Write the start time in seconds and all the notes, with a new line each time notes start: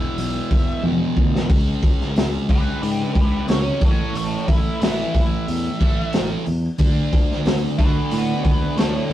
Already playing: E2 B2 E3 B4 E5
0.17 B1 E5, open hi-hat
0.50 E1, kick, open hi-hat
0.83 E1 E2 B2 E3, high tom
1.16 D2, kick
1.36 snare
1.49 C#2 C#3 G#3 C#4, kick, open hi-hat
1.83 C#2, kick, open hi-hat
2.01 snare
2.16 C#2, snare, open hi-hat
2.49 C#2 C#3 G#3 C#4 G4 B4, kick, open hi-hat
2.82 G#2 G4 B4, open hi-hat
3.13 C#2 G4 B4, kick, open hi-hat
3.48 C#2 C#3 G#3 C#4 G#4 C#5, snare, open hi-hat
3.80 A1 A2 E3 A3, kick, open hi-hat
3.85 A4 C#5
4.14 A1 A4 C#5, open hi-hat
4.48 A1 B4 E5, kick, open hi-hat
4.81 A1 A2 E3 A3 B4 E5, snare, open hi-hat
5.14 A1 B4 E5, kick, open hi-hat
5.48 E2 E5, open hi-hat
5.80 A1 A2 E3 A3, kick, open hi-hat
6.13 A1, snare, open hi-hat
6.46 E2, open hi-hat
6.78 D2 D3 A3 D4, kick, open hi-hat
7.13 D2, kick, open hi-hat
7.32 snare
7.45 D2, snare, open hi-hat
7.78 D2 D3 A3 D4 F#4 B4, kick, open hi-hat
8.11 A2 F#4 B4, open hi-hat
8.44 D2 F#4 B4, kick, open hi-hat
8.76 D2 D3 A3 D4 A4 C#5, snare, open hi-hat
9.10 D2